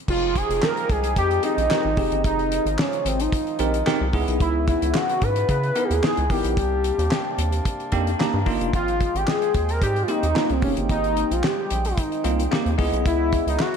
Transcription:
0.08 analog synth bass F1, harmonium F3 G#3 D#4 G4, analog synth lead F4, kick, crash
0.35 analog synth lead G#4, kick, closed hi-hat
0.50 analog synth bass F1, closed hi-hat
0.63 analog synth lead A#4, snare, clap
0.77 closed hi-hat
0.89 analog synth bass C2, analog synth lead G#4, kick, closed hi-hat
1.04 closed hi-hat
1.16 analog synth bass F2, analog synth lead G4, kick, closed hi-hat
1.31 closed hi-hat
1.43 tine electric piano C4 D#4 G4 G#4, analog synth lead D#4, closed hi-hat
1.58 analog synth bass A#1, closed hi-hat
1.70 tine electric piano C4 D#4 G4 A#4, snare, clap
1.85 analog synth bass G#1
1.97 analog synth bass F1, tine electric piano C4 D#4 G4 G#4, kick, open hi-hat
2.12 analog synth bass G1, closed hi-hat
2.24 analog synth bass F1, analog synth lead D#4, harmonium F4, kick, closed hi-hat
2.39 closed hi-hat
2.52 closed hi-hat
2.65 analog synth bass G#1, closed hi-hat
2.79 analog synth lead C#4, snare, clap
2.93 closed hi-hat
3.05 analog synth bass G#1, analog synth lead C4, closed hi-hat
3.20 analog synth lead D#4, closed hi-hat
3.32 kick, closed hi-hat
3.47 closed hi-hat
3.59 analog synth bass A#1, tine electric piano C4 D#4 G4 A#4, closed hi-hat
3.74 closed hi-hat
3.86 tine electric piano C4 D#4 G4 A#4, snare, clap
4.01 analog synth bass C2
4.13 analog synth bass C#2, harmonium C#3 E3 B3, tine electric piano B3 D#4 E4 G#4, kick, open hi-hat
4.28 analog synth bass B1, closed hi-hat
4.40 analog synth bass C#2, analog synth lead E4, kick, closed hi-hat
4.67 analog synth lead E4, kick, closed hi-hat
4.82 analog synth bass C#2, closed hi-hat
4.95 analog synth lead F#4, snare, clap
5.09 closed hi-hat
5.22 analog synth bass G#2, analog synth lead B4, kick, closed hi-hat
5.36 closed hi-hat
5.49 analog synth bass C#3, kick, closed hi-hat
5.63 closed hi-hat
5.75 tine electric piano B3 D#4 E4 A#4, closed hi-hat
5.84 analog synth lead G4
5.90 analog synth bass D#2, analog synth lead G#4, closed hi-hat
6.03 tine electric piano B3 D#4 E4 G#4, snare, clap
6.17 analog synth bass C#2, closed hi-hat
6.30 analog synth bass G#1, tine electric piano B3 D#4 E4 A#4, analog synth lead G4, kick, open hi-hat
6.44 analog synth bass A#1, closed hi-hat
6.57 analog synth bass C2, harmonium C3 A#3 D4, kick, closed hi-hat
6.84 closed hi-hat
6.98 analog synth bass D#2, closed hi-hat
7.12 snare, clap
7.38 analog synth bass D#2, closed hi-hat
7.52 closed hi-hat
7.65 kick, closed hi-hat
7.80 closed hi-hat
7.92 analog synth bass F2, tine electric piano A#3 D4 D#4 G4 G5, kick, closed hi-hat
8.07 closed hi-hat
8.19 tine electric piano A#3 D4 D#4 G4 A#5, snare, clap
8.34 analog synth bass G2
8.46 analog synth bass G1, tine electric piano A#3 D4 D#4 F4, kick, open hi-hat
8.61 analog synth bass F1, closed hi-hat
8.73 analog synth bass G#1, harmonium G#3 C4 G5, analog synth lead F4, kick, closed hi-hat
8.88 closed hi-hat
9.01 kick, closed hi-hat
9.15 analog synth bass G#1, analog synth lead G4, closed hi-hat
9.28 analog synth lead G#4, snare, clap
9.42 closed hi-hat
9.54 analog synth bass D#2, kick, closed hi-hat
9.69 analog synth lead A#4, closed hi-hat
9.82 analog synth bass G#2, analog synth lead G4, kick, closed hi-hat
9.96 closed hi-hat
10.03 analog synth lead F4
10.08 tine electric piano A#3 C4 D#4 G4, analog synth lead D#4, closed hi-hat
10.23 analog synth bass D#2, closed hi-hat
10.35 tine electric piano A#3 C4 D#4 F4, snare, clap
10.49 analog synth bass C2, analog synth lead C4, closed hi-hat
10.61 analog synth bass F1, tine electric piano A#3 C4 D#4 G4, analog synth lead C#4, kick, open hi-hat
10.77 analog synth bass G1, closed hi-hat
10.89 analog synth bass G#1, analog synth lead D#4, kick, closed hi-hat
11.04 closed hi-hat
11.17 closed hi-hat
11.31 analog synth bass A#1, analog synth lead F4, closed hi-hat
11.44 analog synth lead G4, snare, clap
11.70 analog synth bass A#1, closed hi-hat
11.85 analog synth lead D#4, closed hi-hat
11.97 kick, closed hi-hat
12.12 closed hi-hat
12.24 analog synth bass C2, tine electric piano A#3 C4 D#4 F4, closed hi-hat
12.39 closed hi-hat
12.51 tine electric piano A#3 C4 D#4 G4, snare, clap
12.66 analog synth bass D#2, closed hi-hat
12.78 analog synth bass C#2, harmonium C#3 B3 E4, tine electric piano B3 E4 G#4 D#5, kick, open hi-hat
12.93 analog synth bass B1, closed hi-hat
13.06 analog synth bass C#2, analog synth lead E4, kick, closed hi-hat
13.32 kick, closed hi-hat
13.47 analog synth bass C#2, analog synth lead D#4, closed hi-hat
13.60 analog synth lead F#4, snare, clap

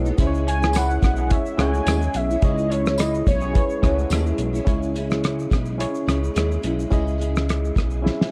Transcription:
Already playing: analog synth bass B1, reed electric piano D#4 F#4 G#4 B4
0.05 nylon-string guitar G#3 B3 D#4, shaker
0.18 analog synth bass C#2, nylon-string guitar C#3 G#3 C#4 E4, reed electric piano C#4 E4 G#4 C5, kick, closed hi-hat, shaker
0.27 reed electric piano C#5
0.34 shaker
0.47 clean electric guitar E4 C#5, soft synth lead G#5, closed hi-hat, shaker
0.61 nylon-string guitar G#3 C#4 E4, cross-stick, shaker
0.73 clean electric guitar E4 B4, soft synth lead F#5, cross-stick, closed hi-hat, tambourine, shaker
0.91 shaker
1.01 analog synth bass B1, nylon-string guitar C#3 G#3 C#4 E4, kick, cross-stick, closed hi-hat, shaker
1.16 clean electric guitar B3 G#4, shaker
1.29 reed electric piano C#4 E4 G#4 C#5, soft synth lead E5, kick, closed hi-hat, shaker
1.46 shaker
1.57 analog synth bass C#2, nylon-string guitar C#3 G#3 C#4, clean electric guitar A3 F#4, reed electric piano C#4 E4 G#4 C#5, soft synth lead G#5, cross-stick, closed hi-hat, shaker
1.61 nylon-string guitar E4
1.74 shaker
1.86 analog synth bass D#2, nylon-string guitar C#3 G#3 C#4 E4, cross-stick, closed hi-hat, tambourine, shaker
2.02 shaker
2.14 analog synth bass B1, soft synth lead E5, closed hi-hat, shaker
2.30 nylon-string guitar G#3 C#4 E4, shaker
2.42 analog synth bass C#2, nylon-string guitar C#3 G#3 C#4 E4, reed electric piano C#4 D#4 G#4 C#5, soft synth lead D#5, kick, closed hi-hat, shaker
2.50 reed electric piano E4
2.58 shaker
2.70 clean electric guitar E4 C#5, soft synth lead C#5, closed hi-hat, shaker
2.86 nylon-string guitar G#3 C#4 E4, cross-stick, shaker
2.98 clean electric guitar E4 B4, soft synth lead D#5, cross-stick, closed hi-hat, tambourine, shaker
3.15 shaker
3.27 analog synth bass B1, nylon-string guitar C#3 G#3 C#4 E4, soft synth lead C#5, kick, closed hi-hat, shaker
3.41 clean electric guitar B3 G#4, shaker
3.52 reed electric piano C#4 E4 G#4 B4, kick, closed hi-hat, shaker
3.70 shaker
3.82 analog synth bass C#2, nylon-string guitar C#3 G#3 C#4 E4, clean electric guitar A3 F#4, reed electric piano C#4 E4 G#4 C#5, kick, cross-stick, closed hi-hat, shaker
3.99 shaker
4.10 analog synth bass D#2, nylon-string guitar C#3 G#3 C#4 E4, cross-stick, closed hi-hat, tambourine, shaker
4.26 shaker
4.38 analog synth bass B1, closed hi-hat, shaker
4.53 nylon-string guitar G#3 C#4 E4, shaker
4.65 analog synth bass C#2, nylon-string guitar C#3 G#3 C#4 E4, reed electric piano C#4 E4 G#4 C#5, kick, closed hi-hat, shaker
4.83 shaker
4.94 nylon-string guitar C#3 G#3 C#4 E4, closed hi-hat, shaker
5.11 cross-stick, shaker
5.24 cross-stick, closed hi-hat, shaker
5.39 shaker
5.50 analog synth bass B1, nylon-string guitar C#3 G#3 C#4 E4, kick, cross-stick, closed hi-hat, shaker
5.65 shaker
5.78 reed electric piano C#4 E4 G#4 C#5, closed hi-hat, shaker
5.95 shaker
6.06 analog synth bass C#2, nylon-string guitar C#3 G#3 C#4 E4, cross-stick, closed hi-hat, shaker
6.24 shaker
6.34 analog synth bass D#2, nylon-string guitar C#3 G#3 C#4 E4, cross-stick, closed hi-hat, shaker
6.51 shaker
6.62 analog synth bass B1, nylon-string guitar C#3 G#3 C#4 E4, closed hi-hat, shaker
6.80 shaker
6.90 analog synth bass C#2, nylon-string guitar C#3 G#3 C#4 E4, reed electric piano C#4 E4 G#4 D#5, kick, closed hi-hat, shaker
7.07 shaker
7.18 nylon-string guitar C#3 G#3 C#4 E4, closed hi-hat, shaker
7.36 cross-stick, shaker
7.49 cross-stick, closed hi-hat, shaker
7.65 shaker
7.75 analog synth bass B1, nylon-string guitar C#3 G#3 C#4 E4, kick, cross-stick, closed hi-hat, shaker
7.90 shaker
8.02 reed electric piano C#4 E4 G#4 E5
8.06 snare
8.21 snare

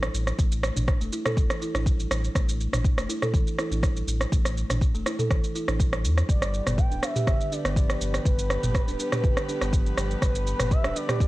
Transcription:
0.03 cross-stick, shaker
0.14 sub bass A1, shaker
0.27 cross-stick, shaker
0.39 sub bass A1, kalimba A3, kick, shaker
0.52 shaker
0.63 cross-stick, shaker
0.76 sub bass A1, kalimba D4, mid tom, shaker
0.88 kick, cross-stick, shaker
1.01 sub bass E1, kalimba A3, shaker
1.13 kalimba E4, shaker
1.25 kalimba A4, cross-stick, mid tom, shaker
1.37 sub bass A1, kalimba E3, kick, shaker
1.50 cross-stick, shaker
1.62 kalimba E4, shaker
1.74 sub bass A1, kalimba D4, cross-stick, shaker
1.86 kalimba G3, kick, shaker
2.00 shaker
2.11 sub bass A1, cross-stick, shaker
2.24 shaker
2.35 sub bass A1, kalimba A3, kick, cross-stick, shaker
2.49 shaker
2.60 shaker
2.73 sub bass A1, kalimba D4, cross-stick, mid tom, shaker
2.84 kick, shaker
2.98 sub bass E1, kalimba A3, cross-stick, shaker
3.09 kalimba E4, shaker
3.22 kalimba A4, cross-stick, mid tom, shaker
3.34 sub bass A1, kalimba E3, kick, shaker
3.47 shaker
3.58 kalimba E4, cross-stick, shaker
3.71 sub bass A1, kalimba D4, shaker
3.83 kick, cross-stick, shaker
3.97 shaker
4.07 sub bass A1, shaker
4.21 cross-stick, shaker
4.32 sub bass A1, kalimba A3, kick, shaker
4.45 cross-stick, shaker
4.57 shaker
4.70 sub bass A1, kalimba D4, cross-stick, mid tom, shaker
4.81 kick, shaker
4.94 sub bass E1, kalimba A3, shaker
5.06 kalimba E4, cross-stick, shaker
5.19 kalimba A4, mid tom, shaker
5.31 sub bass A1, kalimba E3, kick, cross-stick, shaker
5.44 shaker
5.55 kalimba E4, shaker
5.68 sub bass A1, kalimba D4, cross-stick, shaker
5.80 kalimba G3, kick, shaker
5.93 cross-stick, shaker
6.04 sub bass E2, shaker
6.18 cross-stick, shaker
6.29 sub bass G1, string section D3 G3 B3 G4 B4, kalimba G3, analog synth lead D5, kick, shaker
6.42 cross-stick, shaker
6.54 shaker
6.67 sub bass G1, kalimba B3, cross-stick, mid tom, shaker
6.78 analog synth lead G5, kick, shaker
6.91 sub bass D1, kalimba D4, shaker
7.03 kalimba D4, analog synth lead E5, cross-stick, shaker
7.16 kalimba G4, mid tom, shaker
7.27 sub bass G1, kalimba D3, kick, cross-stick, shaker
7.41 shaker
7.52 kalimba D4, analog synth lead D5, shaker
7.65 sub bass G1, kalimba B3, cross-stick, shaker
7.76 kalimba F3, kick, shaker
7.90 cross-stick, shaker
8.01 sub bass G1, shaker
8.14 cross-stick, shaker
8.25 sub bass G1, kalimba G3, analog synth lead B4, kick, shaker
8.39 shaker
8.50 cross-stick, shaker
8.63 sub bass G1, kalimba B3, mid tom, shaker
8.75 kick, cross-stick, shaker
8.87 sub bass D1, kalimba D4, shaker
8.99 kalimba D4, shaker
9.12 kalimba G4, cross-stick, mid tom, shaker
9.24 sub bass G1, kalimba D3, kick, shaker
9.37 cross-stick, shaker
9.49 kalimba D4, shaker
9.61 sub bass G1, kalimba B3, cross-stick, shaker
9.73 kalimba F3, kick, shaker
9.86 shaker
9.97 sub bass G1, cross-stick, shaker
10.11 shaker
10.22 sub bass G1, kalimba G3, analog synth lead B4, kick, cross-stick, shaker
10.35 shaker
10.47 shaker
10.59 sub bass G1, kalimba B3, cross-stick, mid tom, shaker
10.71 analog synth lead E5, kick, shaker
10.84 sub bass D1, kalimba D4, cross-stick, shaker
10.96 kalimba D4, analog synth lead D5, shaker
11.09 kalimba G4, cross-stick, mid tom, shaker
11.20 sub bass G1, kalimba D3, kick, shaker

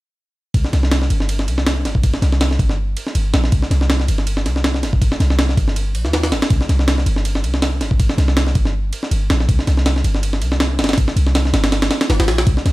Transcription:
0.54 808-style bass C2, kick, ride
0.64 snare
0.73 808-style bass C2, snare, ride
0.83 snare
0.91 snare, ride
1.02 snare
1.10 808-style bass G1, ride
1.20 snare
1.29 ride
1.39 snare
1.48 808-style bass C2, ride
1.58 snare
1.67 snare, ride
1.85 808-style bass G1, snare, ride
1.95 kick
2.03 kick, ride
2.14 snare
2.22 808-style bass C2, snare, ride
2.32 snare
2.41 snare, ride
2.51 snare
2.59 808-style bass G1, kick, ride
2.69 snare
2.97 ride
3.07 snare
3.15 808-style bass G1, ride
3.34 808-style bass A#1, snare, ride
3.44 snare
3.52 808-style bass C2, kick, ride
3.62 snare
3.71 808-style bass C2, snare, ride
3.81 snare
3.90 snare, ride
4.00 snare
4.08 808-style bass G1, ride
4.18 snare
4.27 ride
4.37 snare
4.46 808-style bass C2, snare, ride
4.56 snare
4.64 snare, ride
4.74 snare
4.83 808-style bass G1, snare, ride
4.93 kick
5.02 kick, ride
5.12 snare
5.20 808-style bass C2, snare, ride
5.30 snare
5.39 snare, ride
5.49 snare
5.57 808-style bass G1, kick, ride
5.68 snare
5.76 ride
5.95 808-style bass A#1, ride
6.04 808-style bass D#2, snare
6.13 snare, ride
6.23 snare, ride
6.32 808-style bass G1, snare, ride
6.42 snare, ride
6.50 808-style bass C2, kick, ride
6.61 snare
6.69 808-style bass C2, snare, ride
6.79 snare
6.88 snare, ride
6.98 snare
7.06 808-style bass G1, ride
7.16 snare
7.25 ride
7.35 snare
7.43 808-style bass C2, ride
7.54 snare
7.62 snare, ride
7.81 808-style bass G1, snare, ride
7.91 kick
8.00 kick, ride
8.09 snare
8.18 808-style bass C2, snare, ride
8.28 snare
8.37 snare, ride
8.47 snare
8.55 808-style bass G1, kick, ride
8.65 snare
8.93 ride
9.03 snare
9.11 808-style bass G1, ride
9.30 808-style bass A#1, snare, ride
9.40 snare
9.49 808-style bass C2, kick, ride
9.59 snare
9.67 808-style bass C2, snare, ride
9.77 snare
9.86 snare, ride
9.96 snare
10.04 808-style bass G1, ride
10.15 snare
10.23 ride
10.33 snare
10.42 808-style bass C2, ride
10.52 snare
10.60 snare, ride
10.79 808-style bass G1, snare, ride
10.84 snare, ride
10.89 snare, ride
10.93 snare, ride
10.98 kick, ride
11.08 snare
11.16 808-style bass C2, ride
11.27 snare
11.35 snare, ride
11.45 snare
11.53 808-style bass G1, snare, ride
11.64 snare, ride
11.72 snare, ride
11.82 snare, ride
11.91 snare, ride
12.01 snare, ride
12.10 808-style bass G1, snare, ride
12.20 808-style bass G1, snare, ride
12.28 808-style bass A#1, snare, ride
12.38 snare, ride
12.47 808-style bass C2, kick, ride
12.57 snare
12.65 808-style bass C2, snare, ride

